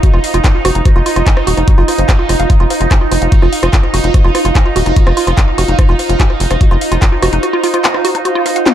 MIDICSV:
0, 0, Header, 1, 6, 480
1, 0, Start_track
1, 0, Tempo, 410959
1, 999, Time_signature, 4, 2, 24, 8
1, 10211, End_track
2, 0, Start_track
2, 0, Title_t, "Ambient pad"
2, 0, Program_c, 0, 92
2, 0, Note_on_c, 0, 65, 86
2, 0, Note_on_c, 0, 72, 94
2, 0, Note_on_c, 0, 77, 95
2, 10211, Note_off_c, 0, 65, 0
2, 10211, Note_off_c, 0, 72, 0
2, 10211, Note_off_c, 0, 77, 0
2, 10211, End_track
3, 0, Start_track
3, 0, Title_t, "Synth arpeggio sound"
3, 0, Program_c, 1, 84
3, 38, Note_on_c, 1, 66, 85
3, 81, Note_off_c, 1, 66, 0
3, 158, Note_on_c, 1, 65, 99
3, 201, Note_off_c, 1, 65, 0
3, 278, Note_on_c, 1, 77, 80
3, 321, Note_off_c, 1, 77, 0
3, 399, Note_on_c, 1, 65, 104
3, 441, Note_off_c, 1, 65, 0
3, 519, Note_on_c, 1, 65, 87
3, 582, Note_off_c, 1, 65, 0
3, 638, Note_on_c, 1, 65, 74
3, 681, Note_off_c, 1, 65, 0
3, 758, Note_on_c, 1, 66, 109
3, 801, Note_off_c, 1, 66, 0
3, 878, Note_on_c, 1, 63, 80
3, 942, Note_off_c, 1, 63, 0
3, 998, Note_on_c, 1, 66, 84
3, 1040, Note_off_c, 1, 66, 0
3, 1119, Note_on_c, 1, 65, 104
3, 1161, Note_off_c, 1, 65, 0
3, 1238, Note_on_c, 1, 65, 102
3, 1302, Note_off_c, 1, 65, 0
3, 1358, Note_on_c, 1, 65, 100
3, 1401, Note_off_c, 1, 65, 0
3, 1598, Note_on_c, 1, 65, 81
3, 1640, Note_off_c, 1, 65, 0
3, 1718, Note_on_c, 1, 66, 99
3, 1760, Note_off_c, 1, 66, 0
3, 1838, Note_on_c, 1, 63, 77
3, 1902, Note_off_c, 1, 63, 0
3, 1958, Note_on_c, 1, 66, 84
3, 2000, Note_off_c, 1, 66, 0
3, 2078, Note_on_c, 1, 65, 106
3, 2120, Note_off_c, 1, 65, 0
3, 2198, Note_on_c, 1, 65, 79
3, 2240, Note_off_c, 1, 65, 0
3, 2318, Note_on_c, 1, 72, 78
3, 2344, Note_off_c, 1, 72, 0
3, 2438, Note_on_c, 1, 66, 87
3, 2463, Note_off_c, 1, 66, 0
3, 2558, Note_on_c, 1, 65, 74
3, 2600, Note_off_c, 1, 65, 0
3, 2678, Note_on_c, 1, 65, 83
3, 2742, Note_off_c, 1, 65, 0
3, 2798, Note_on_c, 1, 77, 104
3, 2824, Note_off_c, 1, 77, 0
3, 2918, Note_on_c, 1, 65, 84
3, 2960, Note_off_c, 1, 65, 0
3, 3038, Note_on_c, 1, 65, 100
3, 3080, Note_off_c, 1, 65, 0
3, 3158, Note_on_c, 1, 77, 73
3, 3200, Note_off_c, 1, 77, 0
3, 3278, Note_on_c, 1, 65, 74
3, 3321, Note_off_c, 1, 65, 0
3, 3398, Note_on_c, 1, 66, 85
3, 3440, Note_off_c, 1, 66, 0
3, 3518, Note_on_c, 1, 65, 73
3, 3544, Note_off_c, 1, 65, 0
3, 3638, Note_on_c, 1, 65, 76
3, 3680, Note_off_c, 1, 65, 0
3, 3758, Note_on_c, 1, 77, 73
3, 3801, Note_off_c, 1, 77, 0
3, 3878, Note_on_c, 1, 66, 83
3, 3921, Note_off_c, 1, 66, 0
3, 3998, Note_on_c, 1, 65, 102
3, 4041, Note_off_c, 1, 65, 0
3, 4118, Note_on_c, 1, 77, 80
3, 4161, Note_off_c, 1, 77, 0
3, 4238, Note_on_c, 1, 65, 101
3, 4280, Note_off_c, 1, 65, 0
3, 4358, Note_on_c, 1, 65, 87
3, 4422, Note_off_c, 1, 65, 0
3, 4478, Note_on_c, 1, 65, 75
3, 4520, Note_off_c, 1, 65, 0
3, 4598, Note_on_c, 1, 66, 104
3, 4640, Note_off_c, 1, 66, 0
3, 4718, Note_on_c, 1, 63, 76
3, 4782, Note_off_c, 1, 63, 0
3, 4838, Note_on_c, 1, 66, 83
3, 4880, Note_off_c, 1, 66, 0
3, 4958, Note_on_c, 1, 65, 106
3, 5000, Note_off_c, 1, 65, 0
3, 5078, Note_on_c, 1, 65, 99
3, 5141, Note_off_c, 1, 65, 0
3, 5198, Note_on_c, 1, 65, 99
3, 5240, Note_off_c, 1, 65, 0
3, 5318, Note_on_c, 1, 65, 85
3, 5382, Note_off_c, 1, 65, 0
3, 5438, Note_on_c, 1, 65, 78
3, 5480, Note_off_c, 1, 65, 0
3, 5558, Note_on_c, 1, 66, 100
3, 5600, Note_off_c, 1, 66, 0
3, 5678, Note_on_c, 1, 63, 77
3, 5741, Note_off_c, 1, 63, 0
3, 5798, Note_on_c, 1, 66, 85
3, 5840, Note_off_c, 1, 66, 0
3, 5918, Note_on_c, 1, 65, 101
3, 5961, Note_off_c, 1, 65, 0
3, 6038, Note_on_c, 1, 65, 102
3, 6102, Note_off_c, 1, 65, 0
3, 6159, Note_on_c, 1, 65, 101
3, 6201, Note_off_c, 1, 65, 0
3, 6279, Note_on_c, 1, 65, 90
3, 6342, Note_off_c, 1, 65, 0
3, 6399, Note_on_c, 1, 77, 75
3, 6441, Note_off_c, 1, 77, 0
3, 6519, Note_on_c, 1, 66, 112
3, 6561, Note_off_c, 1, 66, 0
3, 6639, Note_on_c, 1, 63, 77
3, 6702, Note_off_c, 1, 63, 0
3, 6759, Note_on_c, 1, 65, 88
3, 6801, Note_off_c, 1, 65, 0
3, 6879, Note_on_c, 1, 65, 107
3, 6921, Note_off_c, 1, 65, 0
3, 6998, Note_on_c, 1, 77, 78
3, 7041, Note_off_c, 1, 77, 0
3, 7119, Note_on_c, 1, 65, 75
3, 7161, Note_off_c, 1, 65, 0
3, 7238, Note_on_c, 1, 66, 85
3, 7280, Note_off_c, 1, 66, 0
3, 7358, Note_on_c, 1, 65, 74
3, 7384, Note_off_c, 1, 65, 0
3, 7479, Note_on_c, 1, 65, 76
3, 7521, Note_off_c, 1, 65, 0
3, 7598, Note_on_c, 1, 77, 79
3, 7641, Note_off_c, 1, 77, 0
3, 7718, Note_on_c, 1, 66, 83
3, 7761, Note_off_c, 1, 66, 0
3, 7838, Note_on_c, 1, 65, 99
3, 7880, Note_off_c, 1, 65, 0
3, 7958, Note_on_c, 1, 77, 78
3, 8001, Note_off_c, 1, 77, 0
3, 8078, Note_on_c, 1, 65, 100
3, 8121, Note_off_c, 1, 65, 0
3, 8198, Note_on_c, 1, 65, 85
3, 8262, Note_off_c, 1, 65, 0
3, 8318, Note_on_c, 1, 65, 77
3, 8361, Note_off_c, 1, 65, 0
3, 8438, Note_on_c, 1, 66, 101
3, 8480, Note_off_c, 1, 66, 0
3, 8558, Note_on_c, 1, 63, 79
3, 8622, Note_off_c, 1, 63, 0
3, 8678, Note_on_c, 1, 66, 90
3, 8720, Note_off_c, 1, 66, 0
3, 8798, Note_on_c, 1, 65, 100
3, 8840, Note_off_c, 1, 65, 0
3, 8918, Note_on_c, 1, 65, 101
3, 8982, Note_off_c, 1, 65, 0
3, 9038, Note_on_c, 1, 65, 101
3, 9080, Note_off_c, 1, 65, 0
3, 9157, Note_on_c, 1, 65, 85
3, 9221, Note_off_c, 1, 65, 0
3, 9278, Note_on_c, 1, 65, 79
3, 9320, Note_off_c, 1, 65, 0
3, 9398, Note_on_c, 1, 66, 100
3, 9440, Note_off_c, 1, 66, 0
3, 9518, Note_on_c, 1, 63, 77
3, 9581, Note_off_c, 1, 63, 0
3, 9638, Note_on_c, 1, 66, 82
3, 9680, Note_off_c, 1, 66, 0
3, 9758, Note_on_c, 1, 65, 102
3, 9800, Note_off_c, 1, 65, 0
3, 9878, Note_on_c, 1, 77, 77
3, 9941, Note_off_c, 1, 77, 0
3, 9998, Note_on_c, 1, 78, 75
3, 10040, Note_off_c, 1, 78, 0
3, 10118, Note_on_c, 1, 65, 85
3, 10182, Note_off_c, 1, 65, 0
3, 10211, End_track
4, 0, Start_track
4, 0, Title_t, "Synth texture"
4, 0, Program_c, 2, 99
4, 0, Note_on_c, 2, 63, 90
4, 10211, Note_off_c, 2, 63, 0
4, 10211, End_track
5, 0, Start_track
5, 0, Title_t, "Analog synth bass"
5, 0, Program_c, 3, 38
5, 158, Note_on_c, 3, 29, 78
5, 238, Note_off_c, 3, 29, 0
5, 398, Note_on_c, 3, 29, 79
5, 478, Note_off_c, 3, 29, 0
5, 758, Note_on_c, 3, 29, 99
5, 838, Note_off_c, 3, 29, 0
5, 878, Note_on_c, 3, 29, 86
5, 958, Note_off_c, 3, 29, 0
5, 1118, Note_on_c, 3, 29, 77
5, 1198, Note_off_c, 3, 29, 0
5, 1358, Note_on_c, 3, 29, 78
5, 1438, Note_off_c, 3, 29, 0
5, 1718, Note_on_c, 3, 27, 95
5, 1798, Note_off_c, 3, 27, 0
5, 1838, Note_on_c, 3, 29, 80
5, 1918, Note_off_c, 3, 29, 0
5, 2078, Note_on_c, 3, 30, 79
5, 2158, Note_off_c, 3, 30, 0
5, 2318, Note_on_c, 3, 30, 81
5, 2398, Note_off_c, 3, 30, 0
5, 2678, Note_on_c, 3, 29, 100
5, 2758, Note_off_c, 3, 29, 0
5, 2798, Note_on_c, 3, 29, 82
5, 2878, Note_off_c, 3, 29, 0
5, 3038, Note_on_c, 3, 29, 76
5, 3118, Note_off_c, 3, 29, 0
5, 3278, Note_on_c, 3, 29, 81
5, 3358, Note_off_c, 3, 29, 0
5, 3638, Note_on_c, 3, 29, 96
5, 3718, Note_off_c, 3, 29, 0
5, 3758, Note_on_c, 3, 29, 81
5, 3838, Note_off_c, 3, 29, 0
5, 3998, Note_on_c, 3, 29, 78
5, 4078, Note_off_c, 3, 29, 0
5, 4238, Note_on_c, 3, 29, 82
5, 4318, Note_off_c, 3, 29, 0
5, 4598, Note_on_c, 3, 29, 100
5, 4678, Note_off_c, 3, 29, 0
5, 4718, Note_on_c, 3, 29, 80
5, 4798, Note_off_c, 3, 29, 0
5, 4958, Note_on_c, 3, 29, 76
5, 5038, Note_off_c, 3, 29, 0
5, 5198, Note_on_c, 3, 29, 83
5, 5278, Note_off_c, 3, 29, 0
5, 5558, Note_on_c, 3, 27, 99
5, 5638, Note_off_c, 3, 27, 0
5, 5678, Note_on_c, 3, 29, 82
5, 5758, Note_off_c, 3, 29, 0
5, 5918, Note_on_c, 3, 29, 79
5, 5998, Note_off_c, 3, 29, 0
5, 6158, Note_on_c, 3, 29, 80
5, 6238, Note_off_c, 3, 29, 0
5, 6518, Note_on_c, 3, 29, 99
5, 6598, Note_off_c, 3, 29, 0
5, 6638, Note_on_c, 3, 29, 84
5, 6718, Note_off_c, 3, 29, 0
5, 6878, Note_on_c, 3, 29, 77
5, 6958, Note_off_c, 3, 29, 0
5, 7118, Note_on_c, 3, 29, 80
5, 7198, Note_off_c, 3, 29, 0
5, 7478, Note_on_c, 3, 29, 98
5, 7558, Note_off_c, 3, 29, 0
5, 7598, Note_on_c, 3, 29, 82
5, 7678, Note_off_c, 3, 29, 0
5, 7838, Note_on_c, 3, 29, 81
5, 7918, Note_off_c, 3, 29, 0
5, 8078, Note_on_c, 3, 29, 79
5, 8158, Note_off_c, 3, 29, 0
5, 8438, Note_on_c, 3, 29, 99
5, 8518, Note_off_c, 3, 29, 0
5, 8558, Note_on_c, 3, 29, 86
5, 8638, Note_off_c, 3, 29, 0
5, 10211, End_track
6, 0, Start_track
6, 0, Title_t, "Drums"
6, 38, Note_on_c, 9, 36, 121
6, 38, Note_on_c, 9, 42, 69
6, 155, Note_off_c, 9, 36, 0
6, 155, Note_off_c, 9, 42, 0
6, 158, Note_on_c, 9, 37, 38
6, 275, Note_off_c, 9, 37, 0
6, 278, Note_on_c, 9, 46, 108
6, 395, Note_off_c, 9, 46, 0
6, 398, Note_on_c, 9, 42, 68
6, 515, Note_off_c, 9, 42, 0
6, 518, Note_on_c, 9, 36, 127
6, 518, Note_on_c, 9, 37, 41
6, 518, Note_on_c, 9, 39, 127
6, 518, Note_on_c, 9, 42, 68
6, 635, Note_off_c, 9, 36, 0
6, 635, Note_off_c, 9, 37, 0
6, 635, Note_off_c, 9, 39, 0
6, 635, Note_off_c, 9, 42, 0
6, 758, Note_on_c, 9, 37, 82
6, 758, Note_on_c, 9, 46, 99
6, 875, Note_off_c, 9, 37, 0
6, 875, Note_off_c, 9, 46, 0
6, 878, Note_on_c, 9, 42, 67
6, 995, Note_off_c, 9, 42, 0
6, 998, Note_on_c, 9, 36, 125
6, 999, Note_on_c, 9, 37, 42
6, 999, Note_on_c, 9, 42, 65
6, 1115, Note_off_c, 9, 36, 0
6, 1115, Note_off_c, 9, 37, 0
6, 1115, Note_off_c, 9, 42, 0
6, 1238, Note_on_c, 9, 46, 105
6, 1355, Note_off_c, 9, 46, 0
6, 1358, Note_on_c, 9, 37, 41
6, 1358, Note_on_c, 9, 42, 65
6, 1475, Note_off_c, 9, 37, 0
6, 1475, Note_off_c, 9, 42, 0
6, 1478, Note_on_c, 9, 36, 122
6, 1478, Note_on_c, 9, 39, 115
6, 1478, Note_on_c, 9, 42, 64
6, 1595, Note_off_c, 9, 36, 0
6, 1595, Note_off_c, 9, 39, 0
6, 1595, Note_off_c, 9, 42, 0
6, 1598, Note_on_c, 9, 37, 84
6, 1715, Note_off_c, 9, 37, 0
6, 1718, Note_on_c, 9, 46, 102
6, 1835, Note_off_c, 9, 46, 0
6, 1838, Note_on_c, 9, 37, 39
6, 1838, Note_on_c, 9, 42, 63
6, 1955, Note_off_c, 9, 37, 0
6, 1955, Note_off_c, 9, 42, 0
6, 1958, Note_on_c, 9, 36, 127
6, 1958, Note_on_c, 9, 42, 64
6, 2075, Note_off_c, 9, 36, 0
6, 2075, Note_off_c, 9, 42, 0
6, 2198, Note_on_c, 9, 37, 42
6, 2198, Note_on_c, 9, 46, 110
6, 2315, Note_off_c, 9, 37, 0
6, 2315, Note_off_c, 9, 46, 0
6, 2318, Note_on_c, 9, 42, 65
6, 2435, Note_off_c, 9, 42, 0
6, 2438, Note_on_c, 9, 36, 122
6, 2438, Note_on_c, 9, 37, 86
6, 2438, Note_on_c, 9, 39, 125
6, 2438, Note_on_c, 9, 42, 65
6, 2555, Note_off_c, 9, 36, 0
6, 2555, Note_off_c, 9, 37, 0
6, 2555, Note_off_c, 9, 39, 0
6, 2555, Note_off_c, 9, 42, 0
6, 2678, Note_on_c, 9, 37, 39
6, 2678, Note_on_c, 9, 46, 103
6, 2795, Note_off_c, 9, 37, 0
6, 2795, Note_off_c, 9, 46, 0
6, 2798, Note_on_c, 9, 42, 63
6, 2915, Note_off_c, 9, 42, 0
6, 2918, Note_on_c, 9, 36, 119
6, 2918, Note_on_c, 9, 42, 69
6, 3035, Note_off_c, 9, 36, 0
6, 3035, Note_off_c, 9, 42, 0
6, 3158, Note_on_c, 9, 37, 42
6, 3158, Note_on_c, 9, 46, 110
6, 3275, Note_off_c, 9, 37, 0
6, 3275, Note_off_c, 9, 46, 0
6, 3278, Note_on_c, 9, 42, 67
6, 3395, Note_off_c, 9, 42, 0
6, 3398, Note_on_c, 9, 36, 120
6, 3398, Note_on_c, 9, 37, 83
6, 3398, Note_on_c, 9, 39, 112
6, 3398, Note_on_c, 9, 42, 64
6, 3515, Note_off_c, 9, 36, 0
6, 3515, Note_off_c, 9, 37, 0
6, 3515, Note_off_c, 9, 39, 0
6, 3515, Note_off_c, 9, 42, 0
6, 3639, Note_on_c, 9, 37, 45
6, 3639, Note_on_c, 9, 46, 99
6, 3755, Note_off_c, 9, 37, 0
6, 3755, Note_off_c, 9, 46, 0
6, 3758, Note_on_c, 9, 42, 60
6, 3875, Note_off_c, 9, 42, 0
6, 3878, Note_on_c, 9, 36, 120
6, 3878, Note_on_c, 9, 42, 66
6, 3995, Note_off_c, 9, 36, 0
6, 3995, Note_off_c, 9, 42, 0
6, 3999, Note_on_c, 9, 37, 43
6, 4116, Note_off_c, 9, 37, 0
6, 4118, Note_on_c, 9, 46, 111
6, 4235, Note_off_c, 9, 46, 0
6, 4239, Note_on_c, 9, 37, 87
6, 4239, Note_on_c, 9, 42, 63
6, 4356, Note_off_c, 9, 37, 0
6, 4356, Note_off_c, 9, 42, 0
6, 4358, Note_on_c, 9, 36, 118
6, 4359, Note_on_c, 9, 39, 123
6, 4359, Note_on_c, 9, 42, 66
6, 4475, Note_off_c, 9, 36, 0
6, 4476, Note_off_c, 9, 39, 0
6, 4476, Note_off_c, 9, 42, 0
6, 4478, Note_on_c, 9, 37, 38
6, 4595, Note_off_c, 9, 37, 0
6, 4599, Note_on_c, 9, 46, 95
6, 4715, Note_off_c, 9, 46, 0
6, 4719, Note_on_c, 9, 42, 61
6, 4836, Note_off_c, 9, 42, 0
6, 4838, Note_on_c, 9, 36, 119
6, 4839, Note_on_c, 9, 37, 44
6, 4839, Note_on_c, 9, 42, 69
6, 4955, Note_off_c, 9, 36, 0
6, 4955, Note_off_c, 9, 37, 0
6, 4955, Note_off_c, 9, 42, 0
6, 5078, Note_on_c, 9, 37, 82
6, 5078, Note_on_c, 9, 46, 96
6, 5195, Note_off_c, 9, 37, 0
6, 5195, Note_off_c, 9, 46, 0
6, 5198, Note_on_c, 9, 42, 67
6, 5315, Note_off_c, 9, 42, 0
6, 5318, Note_on_c, 9, 36, 118
6, 5318, Note_on_c, 9, 37, 42
6, 5318, Note_on_c, 9, 39, 112
6, 5318, Note_on_c, 9, 42, 64
6, 5435, Note_off_c, 9, 36, 0
6, 5435, Note_off_c, 9, 37, 0
6, 5435, Note_off_c, 9, 39, 0
6, 5435, Note_off_c, 9, 42, 0
6, 5558, Note_on_c, 9, 46, 91
6, 5675, Note_off_c, 9, 46, 0
6, 5678, Note_on_c, 9, 37, 42
6, 5678, Note_on_c, 9, 42, 65
6, 5795, Note_off_c, 9, 37, 0
6, 5795, Note_off_c, 9, 42, 0
6, 5798, Note_on_c, 9, 36, 115
6, 5798, Note_on_c, 9, 42, 70
6, 5915, Note_off_c, 9, 36, 0
6, 5915, Note_off_c, 9, 42, 0
6, 5918, Note_on_c, 9, 37, 86
6, 6035, Note_off_c, 9, 37, 0
6, 6038, Note_on_c, 9, 46, 102
6, 6155, Note_off_c, 9, 46, 0
6, 6159, Note_on_c, 9, 37, 44
6, 6159, Note_on_c, 9, 42, 70
6, 6276, Note_off_c, 9, 37, 0
6, 6276, Note_off_c, 9, 42, 0
6, 6278, Note_on_c, 9, 36, 117
6, 6279, Note_on_c, 9, 39, 119
6, 6279, Note_on_c, 9, 42, 67
6, 6395, Note_off_c, 9, 36, 0
6, 6395, Note_off_c, 9, 39, 0
6, 6395, Note_off_c, 9, 42, 0
6, 6519, Note_on_c, 9, 37, 43
6, 6519, Note_on_c, 9, 46, 94
6, 6635, Note_off_c, 9, 37, 0
6, 6635, Note_off_c, 9, 46, 0
6, 6639, Note_on_c, 9, 42, 66
6, 6755, Note_off_c, 9, 42, 0
6, 6758, Note_on_c, 9, 36, 118
6, 6759, Note_on_c, 9, 37, 86
6, 6759, Note_on_c, 9, 42, 72
6, 6875, Note_off_c, 9, 36, 0
6, 6875, Note_off_c, 9, 37, 0
6, 6875, Note_off_c, 9, 42, 0
6, 6999, Note_on_c, 9, 37, 40
6, 6999, Note_on_c, 9, 46, 99
6, 7115, Note_off_c, 9, 37, 0
6, 7115, Note_off_c, 9, 46, 0
6, 7118, Note_on_c, 9, 42, 69
6, 7235, Note_off_c, 9, 42, 0
6, 7238, Note_on_c, 9, 36, 113
6, 7238, Note_on_c, 9, 39, 117
6, 7238, Note_on_c, 9, 42, 68
6, 7355, Note_off_c, 9, 36, 0
6, 7355, Note_off_c, 9, 39, 0
6, 7355, Note_off_c, 9, 42, 0
6, 7359, Note_on_c, 9, 37, 41
6, 7476, Note_off_c, 9, 37, 0
6, 7479, Note_on_c, 9, 46, 97
6, 7595, Note_off_c, 9, 46, 0
6, 7598, Note_on_c, 9, 37, 80
6, 7598, Note_on_c, 9, 42, 67
6, 7715, Note_off_c, 9, 37, 0
6, 7715, Note_off_c, 9, 42, 0
6, 7718, Note_on_c, 9, 36, 110
6, 7718, Note_on_c, 9, 42, 70
6, 7835, Note_off_c, 9, 36, 0
6, 7835, Note_off_c, 9, 42, 0
6, 7838, Note_on_c, 9, 37, 40
6, 7955, Note_off_c, 9, 37, 0
6, 7958, Note_on_c, 9, 46, 103
6, 8075, Note_off_c, 9, 46, 0
6, 8078, Note_on_c, 9, 42, 70
6, 8195, Note_off_c, 9, 42, 0
6, 8198, Note_on_c, 9, 36, 116
6, 8199, Note_on_c, 9, 37, 42
6, 8199, Note_on_c, 9, 39, 127
6, 8199, Note_on_c, 9, 42, 72
6, 8315, Note_off_c, 9, 36, 0
6, 8315, Note_off_c, 9, 37, 0
6, 8315, Note_off_c, 9, 39, 0
6, 8315, Note_off_c, 9, 42, 0
6, 8439, Note_on_c, 9, 37, 86
6, 8439, Note_on_c, 9, 46, 90
6, 8555, Note_off_c, 9, 37, 0
6, 8555, Note_off_c, 9, 46, 0
6, 8559, Note_on_c, 9, 42, 71
6, 8675, Note_off_c, 9, 42, 0
6, 8678, Note_on_c, 9, 37, 40
6, 8678, Note_on_c, 9, 42, 70
6, 8795, Note_off_c, 9, 37, 0
6, 8795, Note_off_c, 9, 42, 0
6, 8918, Note_on_c, 9, 46, 104
6, 9035, Note_off_c, 9, 46, 0
6, 9039, Note_on_c, 9, 37, 40
6, 9039, Note_on_c, 9, 42, 70
6, 9155, Note_off_c, 9, 37, 0
6, 9155, Note_off_c, 9, 42, 0
6, 9158, Note_on_c, 9, 39, 125
6, 9158, Note_on_c, 9, 42, 70
6, 9275, Note_off_c, 9, 39, 0
6, 9275, Note_off_c, 9, 42, 0
6, 9278, Note_on_c, 9, 37, 81
6, 9395, Note_off_c, 9, 37, 0
6, 9398, Note_on_c, 9, 46, 94
6, 9515, Note_off_c, 9, 46, 0
6, 9518, Note_on_c, 9, 37, 38
6, 9518, Note_on_c, 9, 42, 68
6, 9635, Note_off_c, 9, 37, 0
6, 9635, Note_off_c, 9, 42, 0
6, 9638, Note_on_c, 9, 42, 73
6, 9755, Note_off_c, 9, 42, 0
6, 9878, Note_on_c, 9, 37, 39
6, 9878, Note_on_c, 9, 46, 104
6, 9995, Note_off_c, 9, 37, 0
6, 9995, Note_off_c, 9, 46, 0
6, 9998, Note_on_c, 9, 42, 72
6, 10115, Note_off_c, 9, 42, 0
6, 10118, Note_on_c, 9, 37, 82
6, 10118, Note_on_c, 9, 39, 126
6, 10118, Note_on_c, 9, 42, 75
6, 10118, Note_on_c, 9, 48, 65
6, 10211, Note_off_c, 9, 37, 0
6, 10211, Note_off_c, 9, 39, 0
6, 10211, Note_off_c, 9, 42, 0
6, 10211, Note_off_c, 9, 48, 0
6, 10211, End_track
0, 0, End_of_file